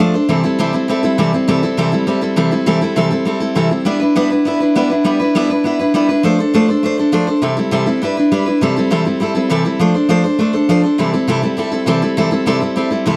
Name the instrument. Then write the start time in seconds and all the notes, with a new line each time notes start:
steel-string acoustic guitar
0.00 F3 A3 D4 A4 C5
0.14 D4 A4 C5
0.28 C3 E3 G3 C4 E4 A4
0.43 G3 C4 E4 A4
0.59 C3 E3 G3 C4 E4 A4
0.73 G3 C4 E4 A4
0.88 G3 C4 E4 A4
1.03 G3 C4 E4 A4
1.18 C3 E3 G3 C4 E4 A4
1.33 G3 C4 E4 A4
1.48 C3 E3 G3 C4 E4 A4
1.63 G3 C4 E4 A4
1.77 C3 E3 G3 C4 E4 A4
1.92 G3 C4 E4 A4
2.07 G3 C4 E4 A4
2.21 G3 C4 E4 A4
2.36 C3 E3 G3 C4 E4 A4
2.51 G3 C4 E4 A4
2.66 C3 E3 G3 C4 E4 A4
2.81 G3 C4 E4 A4
2.96 C3 E3 G3 C4 E4 A4
3.10 G3 C4 E4 A4
3.25 G3 C4 E4 A4
3.40 G3 C4 E4 A4
3.55 C3 E3 G3 C4 E4 A4
3.70 G3 C4 E4 A4
3.85 G3 B3 D4 E4 B4
4.00 D4 E4 B4
4.15 G3 B3 D4 E4 B4
4.30 D4 E4 B4
4.45 B3 D4 E4 B4
4.60 D4 E4 B4
4.75 G3 B3 D4 E4 B4
4.90 D4 E4 B4
5.04 G3 B3 D4 E4 B4
5.20 D4 E4 B4
5.35 G3 B3 D4 E4 B4
5.50 D4 E4 B4
5.64 B3 D4 E4 B4
5.79 D4 E4 B4
5.94 G3 B3 D4 E4 B4
6.09 D4 E4 B4
6.23 F3 A3 D4 A4 C5
6.39 D4 A4 C5
6.54 F3 A3 D4 A4 C5
6.68 D4 A4 C5
6.83 A3 D4 A4 C5
6.98 D4 A4 C5
7.12 F3 A3 D4 A4 C5
7.27 D4 A4 C5
7.42 C3 E3 G3 C4 E4 A4
7.57 G3 C4 E4 A4
7.71 C3 E3 G3 C4 E4 A4
7.86 G3 C4 E4 A4
8.02 G3 D4 E4 B4
8.17 D4 E4 B4
8.32 G3 D4 E4 B4
8.46 D4 E4 B4
8.61 C3 E3 G3 C4 E4 A4
8.76 G3 C4 E4 A4
8.90 C3 E3 G3 C4 E4 A4
9.05 G3 C4 E4 A4
9.20 G3 C4 E4 A4
9.35 G3 C4 E4 A4
9.50 C3 E3 G3 C4 E4 A4
9.65 G3 C4 E4 A4
9.79 F3 A3 D4 A4 C5
9.94 D4 A4 C5
10.09 F3 A3 D4 A4 C5
10.24 D4 A4 C5
10.39 A3 D4 A4 C5
10.53 D4 A4 C5
10.69 F3 A3 D4 A4 C5
10.83 D4 A4 C5
10.98 C3 E3 G3 C4 E4 A4
11.13 G3 C4 E4 A4
11.28 C3 E3 G3 C4 E4 A4
11.42 G3 C4 E4 A4
11.57 G3 C4 E4 A4
11.72 G3 C4 E4 A4
11.86 C3 E3 G3 C4 E4 A4
12.02 G3 C4 E4 A4
12.17 C3 E3 G3 C4 E4 A4
12.31 G3 C4 E4 A4
12.46 C3 E3 G3 C4 E4 A4
12.60 G3 C4 E4 A4
12.76 G3 C4 E4 A4
12.90 G3 C4 E4 A4
13.06 C3 E3 G3 C4 E4 A4